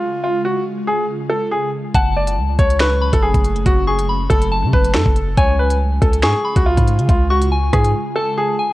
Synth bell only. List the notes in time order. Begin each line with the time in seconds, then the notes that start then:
1.95 A5
2.80 C#6
3.02 B5
3.87 C#6
4.09 B5
4.51 A5
5.37 G#5
6.23 C#6
6.45 B5
7.30 C#6
7.52 G#5
8.16 A5
8.59 G#5